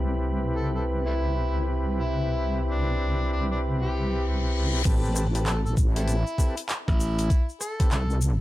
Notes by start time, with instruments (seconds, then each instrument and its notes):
Already playing: wobble bass C2, ambient pad C3 E4 B4, tonewheel organ C4 E4 G4 B4
0.56 harmonica A4
0.75 harmonica A4
1.06 harmonica G3 A3 E4
1.98 harmonica E4
2.71 harmonica D4
3.32 harmonica D4
3.51 harmonica D4
3.63 reverse cymbal
3.82 harmonica G4
4.85 wobble bass A1, tonewheel organ C4 G4 A4 B4, kick, closed hi-hat, crash, shaker
5.05 shaker
5.16 cross-stick, shaker
5.35 tonewheel organ C4 G4 A4 B4, closed hi-hat, shaker
5.46 harmonica A4, clap, closed hi-hat, shaker
5.66 harmonica A4, shaker
5.77 wobble bass A1, kick, shaker
5.96 harmonica G3 A3 E4, tonewheel organ C4 G4 A4 B4, closed hi-hat, shaker
6.08 closed hi-hat, shaker
6.27 shaker
6.38 tonewheel organ C4 G4 A4 B4, kick, shaker
6.57 closed hi-hat, shaker
6.69 clap, closed hi-hat, shaker
6.88 slap bass A1, harmonica E4, kick, shaker
7.00 shaker
7.19 closed hi-hat, shaker
7.30 kick, closed hi-hat, shaker
7.49 shaker
7.61 harmonica A4, cross-stick, shaker
7.80 tonewheel organ C4 G4 A4 B4, kick, closed hi-hat, shaker
7.91 wobble bass C2, harmonica E4 A4, clap, closed hi-hat, shaker
8.10 shaker
8.21 shaker